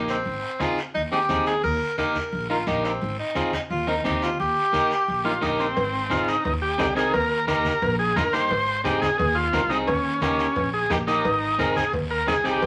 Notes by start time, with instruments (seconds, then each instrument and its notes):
Already playing: upright bass A#1, clean electric guitar A#3 D#4 G4
0.08 tenor saxophone C4, short guiro
0.25 upright bass G#1, long guiro
0.60 clean electric guitar C4 D#4 G#4, tenor saxophone F4, high conga, short guiro
0.78 short guiro
0.94 upright bass D#2, tenor saxophone D#4, long guiro
1.12 clean electric guitar C4 D#4 G#4, tenor saxophone G4
1.29 upright bass D#2, clean electric guitar C4 D#4 G#4, high conga, short guiro
1.46 tenor saxophone G#4, short guiro
1.63 upright bass D#2, tenor saxophone A#4, long guiro
1.98 clean electric guitar A#3 D#4 G4, tenor saxophone A#4, high conga, short guiro
2.15 high conga, short guiro
2.33 upright bass A#1, long guiro
2.50 clean electric guitar A#3 D#4 A#4, tenor saxophone F4
2.67 upright bass A#1, clean electric guitar A#3 D#4 G4, tenor saxophone D#4, high conga, short guiro
2.84 tenor saxophone C4, short guiro
3.01 upright bass G#1, long guiro
3.19 tenor saxophone D#4
3.35 clean electric guitar C4 D#4 G#4, tenor saxophone F4, high conga, short guiro
3.53 tenor saxophone D#4, high conga, short guiro
3.70 upright bass D#2, tenor saxophone F4, long guiro
3.87 clean electric guitar C4 D#4 A#4, tenor saxophone D#4
4.04 upright bass D#2, clean electric guitar C4 D#4 G4, tenor saxophone D#4, high conga, short guiro
4.22 tenor saxophone F4, short guiro
4.39 upright bass D#2, tenor saxophone G4, long guiro
4.73 clean electric guitar A#3 D#4 G4, high conga, short guiro
4.91 short guiro
5.08 upright bass A#1, long guiro
5.25 clean electric guitar A#3 D#4 F4, transistor combo organ F4
5.41 upright bass A#1, clean electric guitar A#3 D#4 G4, transistor combo organ D#4, high conga, short guiro
5.59 transistor combo organ C4, short guiro
5.77 upright bass G#1, cowbell, long guiro
6.10 clean electric guitar C4 D#4 G#4, transistor combo organ F4, cowbell, high conga, short guiro
6.28 transistor combo organ D#4, short guiro
6.45 upright bass D#2, transistor combo organ D#4, cowbell, low conga, long guiro
6.62 transistor combo organ G4
6.78 upright bass C2, clean electric guitar C4 D#4 G#4, cowbell, high conga, low timbale, short guiro
6.95 clean electric guitar C4 D#4 A#4, transistor combo organ G#4, short guiro
7.14 upright bass D#2, transistor combo organ A#4, cowbell, long guiro
7.47 clean electric guitar A#3 D#4 G4, transistor combo organ A#4, cowbell, high conga, short guiro
7.65 high conga, short guiro
7.82 upright bass A#1, cowbell, low conga, long guiro
7.99 transistor combo organ G#4
8.16 upright bass G2, clean electric guitar A#3 D#4 F4, transistor combo organ A#4, cowbell, high conga, low conga, short guiro
8.33 clean electric guitar A#3 D#4 G4, transistor combo organ C5, short guiro
8.51 upright bass G#1, cowbell, long guiro
8.84 clean electric guitar C4 D#4 G#4, transistor combo organ G4, cowbell, high conga, short guiro
9.02 transistor combo organ G#4, high conga, short guiro
9.18 upright bass D#2, transistor combo organ G#4, cowbell, low conga, long guiro
9.35 transistor combo organ F4
9.53 upright bass C2, clean electric guitar C4 D#4 A#4, cowbell, high conga, short guiro
9.70 clean electric guitar C4 D#4 G#4, transistor combo organ D#4, short guiro
9.87 upright bass D#2, transistor combo organ C#4, cowbell, low conga, long guiro
10.22 clean electric guitar A#3 D#4 G4, transistor combo organ C#4, cowbell, high conga, short guiro
10.39 short guiro
10.56 upright bass A#1, cowbell, low conga, long guiro
10.74 transistor combo organ G#4
10.90 upright bass A#1, clean electric guitar A#3 D#4 G4, transistor combo organ G4, cowbell, high conga, low conga, short guiro
11.07 clean electric guitar A#3 D#4 G4, transistor combo organ D#4, short guiro
11.25 upright bass G#1, cowbell, long guiro
11.58 clean electric guitar C4 D#4 G#4, transistor combo organ A#4, cowbell, high conga, short guiro
11.76 transistor combo organ G#4, high conga, short guiro
11.93 upright bass D#2, cowbell, low conga, long guiro
12.11 transistor combo organ A#4
12.27 upright bass C2, clean electric guitar C4 D#4 G#4, transistor combo organ G#4, cowbell, high conga, short guiro
12.44 clean electric guitar C4 D#4 G#4, transistor combo organ G4, short guiro
12.62 upright bass D#2, cowbell, long guiro